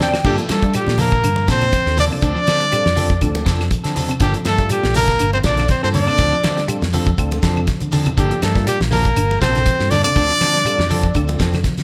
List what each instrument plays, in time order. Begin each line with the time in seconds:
Already playing: fingered electric bass D3
0.00 clean electric guitar D3 F3 C4 D4 A4, tine electric piano D5 G5, snare, low conga, shekere
0.14 snare, claves, shekere
0.24 fingered electric bass G2, clean electric guitar D3 A#3 A4, alto saxophone G3, tine electric piano A#3 D4 F4 A4, trumpet G4, muted clean electric guitar stroke, kick, crash, high conga, shekere
0.38 clean electric guitar F3, closed hi-hat, shekere
0.49 clean electric guitar F3 A#3 D4 A4, fingered electric bass G3, alto saxophone A3, trumpet A4, snare, closed hi-hat, high conga, claves, shekere
0.63 clean electric guitar G3, tine electric piano A#3 D4 F4 A4, kick, closed hi-hat, shekere
0.74 clean electric guitar G3, alto saxophone G3, trumpet G4, closed hi-hat, claves, shekere
0.86 fingered electric bass A#2, snare, high conga, shekere
0.98 clean electric guitar F3 A#3 D4 A4, alto saxophone A#3, trumpet A#4, open hi-hat, low conga, shekere
1.12 kick, closed hi-hat, shekere
1.23 fingered electric bass G2, clean electric guitar D3, closed hi-hat, high conga, claves, shekere
1.36 high conga, shekere
1.48 fingered electric bass A#2, clean electric guitar C3 F3 A#3 D4 A4, alto saxophone C4, tine electric piano F4 A4, trumpet C5, kick, snare, closed hi-hat, shekere
1.61 tine electric piano A#3 D4 F4 C5, closed hi-hat, low conga, claves, shekere
1.73 kick, snare, closed hi-hat, high conga, shekere
1.86 fingered electric bass D#2, tine electric piano A#3 D4 F4 A4, snare, shekere
1.97 clean electric guitar D3 F3 A#3 D4 A4, alto saxophone D4, trumpet D5, snare, open hi-hat, low conga, shekere
2.10 clean electric guitar C3, tine electric piano A#3 D4 F4 A4, alto saxophone D4, claves, shekere
2.14 trumpet D5
2.22 fingered electric bass D2, clean electric guitar D3 F3 C4 D4 A4, kick, closed hi-hat, shekere
2.35 clean electric guitar F3, shekere
2.47 fingered electric bass D3, clean electric guitar F3 C4 D4 A4, snare, closed hi-hat, high conga, claves, shekere
2.60 clean electric guitar G3, closed hi-hat, shekere
2.71 clean electric guitar G3, tine electric piano C4 D4 F4 A4, closed hi-hat, claves, shekere
2.86 fingered electric bass F2, snare, high conga, shekere
2.96 clean electric guitar F3 C4 D4 A4, tine electric piano C4 D4 F4 A4, open hi-hat, low conga, shekere
3.10 kick, high conga, shekere
3.21 fingered electric bass D2, clean electric guitar D3, tine electric piano C4 D4 F4 A4, kick, closed hi-hat, high conga, claves, shekere
3.35 closed hi-hat, high conga, shekere
3.46 fingered electric bass F2, clean electric guitar C3 F3 C4 D4 A4, kick, snare, closed hi-hat, shekere
3.60 snare, claves, shekere
3.71 kick, closed hi-hat, high conga, shekere
3.84 fingered electric bass D3, clean electric guitar C4 D4 A4, snare, closed hi-hat, shekere
3.95 clean electric guitar D3 F3 C4 D4 A4, open hi-hat, low conga, shekere
4.09 clean electric guitar C3, closed hi-hat, claves, shekere
4.20 fingered electric bass G1, clean electric guitar D3 F3 A#3 D4 A4, alto saxophone G3, tine electric piano A#3 D4 F4 A4, trumpet G4, kick, closed hi-hat, shekere
4.34 clean electric guitar F3, closed hi-hat, shekere
4.45 fingered electric bass G2, clean electric guitar F3 A#3 D4 A4, alto saxophone A3, trumpet A4, snare, closed hi-hat, high conga, claves, shekere
4.58 clean electric guitar G3, tine electric piano A#3 D4 F4 A4, kick, closed hi-hat, shekere
4.69 clean electric guitar G3, alto saxophone G3, trumpet G4, closed hi-hat, high conga, claves, shekere
4.83 fingered electric bass A#1, snare, high conga, shekere
4.94 clean electric guitar F3 A#3 D4 A4, alto saxophone A#3, trumpet A#4, open hi-hat, low conga, shekere
5.08 kick, snare, closed hi-hat, shekere
5.19 fingered electric bass G1, clean electric guitar D3, closed hi-hat, claves, shekere
5.33 alto saxophone C4, trumpet C5, high conga, shekere
5.43 fingered electric bass A#1, clean electric guitar C3 F3 A#3 D4 A4, alto saxophone D4, tine electric piano F4 A4, trumpet D5, kick, snare, closed hi-hat, shekere
5.57 tine electric piano A#3 D4 F4 A4, snare, closed hi-hat, low conga, claves, shekere
5.68 alto saxophone C4, trumpet C5, kick, snare, closed hi-hat, high conga, shekere
5.82 fingered electric bass G2, tine electric piano A#3 D4 F4 A4, clean electric guitar A#3 D4 A4, alto saxophone C4, trumpet C5, snare, shekere
5.94 clean electric guitar D3 A#3 D4 A4, alto saxophone D4, trumpet D5, muted clean electric guitar stroke, open hi-hat, low conga, shekere
6.07 clean electric guitar C3 A#3 D4 A4, tine electric piano A#3 D4 F4 A4, claves, shekere
6.18 fingered electric bass D2, clean electric guitar D3 F3 C4 D4 A4, kick, snare, closed hi-hat, high conga, shekere
6.32 clean electric guitar F3, shekere
6.43 fingered electric bass D3, clean electric guitar F3 C4 D4 A4, snare, closed hi-hat, high conga, claves, shekere
6.57 clean electric guitar G3, snare, closed hi-hat, shekere
6.68 clean electric guitar G3, tine electric piano C4 D4 F4 A4, closed hi-hat, high conga, claves, shekere
6.82 fingered electric bass F2, snare, high conga, shekere
6.93 clean electric guitar F3 C4 D4 A4, tine electric piano C4 D4 F4 A4, open hi-hat, low conga, shekere
7.06 kick, high conga, shekere
7.18 fingered electric bass D2, tine electric piano C4 D4 F4 A4, muted clean electric guitar stroke, kick, closed hi-hat, high conga, claves, shekere
7.31 closed hi-hat, high conga, shekere
7.43 fingered electric bass F2, clean electric guitar C3 F3 C4 D4 A4, kick, snare, closed hi-hat, shekere
7.56 low conga, claves, shekere
7.67 kick, snare, closed hi-hat, high conga, shekere
7.80 fingered electric bass D3, closed hi-hat, high conga, shekere
7.92 clean electric guitar D3 F3 C4 D4 A4, open hi-hat, low conga, shekere
8.06 clean electric guitar C3, closed hi-hat, low conga, claves, shekere
8.17 fingered electric bass G1, clean electric guitar D3 F3 A#3 D4 A4, alto saxophone G3, tine electric piano A#3 D4 F4 A4, trumpet G4, kick, closed hi-hat, high conga, shekere
8.31 clean electric guitar F3, closed hi-hat, shekere
8.42 fingered electric bass G2, clean electric guitar F3 A#3 D4, alto saxophone A3, trumpet A4, snare, closed hi-hat, high conga, claves, shekere
8.55 clean electric guitar G3, tine electric piano A#3 D4 F4 A#4, kick, snare, closed hi-hat, shekere
8.67 alto saxophone G3, clean electric guitar G3, trumpet G4, closed hi-hat, high conga, claves, shekere
8.80 fingered electric bass A#1, snare, high conga, shekere
8.91 clean electric guitar F3 A#3 D4 A4, alto saxophone A#3, trumpet A#4, open hi-hat, low conga, shekere
9.05 kick, closed hi-hat, shekere
9.16 fingered electric bass G1, clean electric guitar D3, closed hi-hat, high conga, claves, shekere
9.30 high conga, shekere
9.41 fingered electric bass A#1, clean electric guitar C3 F3 A#3 A4, alto saxophone C4, tine electric piano F4 A4, trumpet C5, kick, snare, closed hi-hat, shekere
9.54 tine electric piano A#3 D4 F4 A4, snare, closed hi-hat, low conga, claves, shekere
9.66 kick, closed hi-hat, high conga, shekere
9.79 fingered electric bass G2, tine electric piano A#3 D4 F4 A4, snare, shekere
9.91 clean electric guitar D3 F3 A#3 D4 A4, alto saxophone D4, trumpet D5, snare, open hi-hat, low conga, shekere
10.04 clean electric guitar C3, tine electric piano A#3 D4 F4 A4, alto saxophone D4, trumpet D5, claves, shekere
10.16 fingered electric bass D2, clean electric guitar D3 F3 C4 D4 A4, kick, closed hi-hat, high conga, shekere
10.30 clean electric guitar F3, shekere
10.41 fingered electric bass D3, clean electric guitar F3 C4 D4 A4, snare, closed hi-hat, high conga, claves, shekere
10.54 clean electric guitar G3, snare, closed hi-hat, shekere
10.65 clean electric guitar G3, tine electric piano C4 D4 F4 A4, closed hi-hat, high conga, claves, shekere
10.78 fingered electric bass F2, snare, high conga, shekere
10.90 clean electric guitar F3 C4 D4 A4, tine electric piano C4 D4 F4 A4, open hi-hat, low conga, shekere
11.03 kick, closed hi-hat, high conga, shekere
11.14 fingered electric bass D2, clean electric guitar D3, tine electric piano C4 D4 F4 A4, kick, closed hi-hat, high conga, claves, shekere
11.27 closed hi-hat, high conga, shekere
11.39 fingered electric bass F2, clean electric guitar C3 F3 C4 D4, muted clean electric guitar stroke, kick, snare, closed hi-hat, shekere
11.53 snare, low conga, claves, shekere
11.64 kick, snare, closed hi-hat, high conga, shekere
11.77 fingered electric bass D3, snare, closed hi-hat, shekere